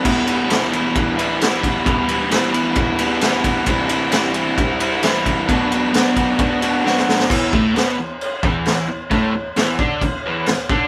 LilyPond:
<<
  \new Staff \with { instrumentName = "Overdriven electric guitar" } { \clef bass \time 4/4 \key e \minor \tempo 4 = 132 <e, b, e g b e'>8 <e g b e'>8 <e, b, e g b e'>8 <e g b e'>4 <e g b e'>8 <e g b e'>4 | <e, b, e g b e'>8 <e g b e'>8 <e, b, e g b e'>8 <e g b e'>4 <e g b e'>8 <e g b e'>4 | <c e g c' e'>8 <g c' e'>8 <c e g c' e'>8 <g c' e'>4 <g c' e'>8 <e g c' e'>4 | <b, fis b d' fis'>8 <b d' fis'>8 <b, fis b d' fis'>8 <b d' fis'>4 <b d' fis'>8 <fis b d' fis'>4 |
<e, e>8 <a, a>8 <b, b>8 e,8 r8 <e, e>4 e,8 | <a, a>8 e,8 <e, e>8 <d d'>8 e,8 <e, e>8 e,8 <d d'>8 | }
  \new DrumStaff \with { instrumentName = "Drums" } \drummode { \time 4/4 <cymc bd>8 cymr8 <cymr sn>8 cymr8 <bd cymr>8 cymr8 <cymr sn>8 <bd cymr>8 | <bd cymr>8 cymr8 <cymr sn>8 cymr8 <bd cymr>8 cymr8 <cymr sn>8 <bd cymr>8 | <bd cymr>8 cymr8 <cymr sn>8 cymr8 <bd cymr>8 cymr8 <cymr sn>8 <bd cymr>8 | <bd cymr>8 cymr8 <cymr sn>8 <bd cymr>8 <bd cymr>8 cymr8 sn16 sn16 sn16 sn16 |
<cymc bd>8 bd8 <cymc sn>4 cymc8 bd8 <cymc sn>4 | <cymc bd>4 <cymc sn>8 bd8 <cymc bd>4 <cymc sn>8 bd8 | }
>>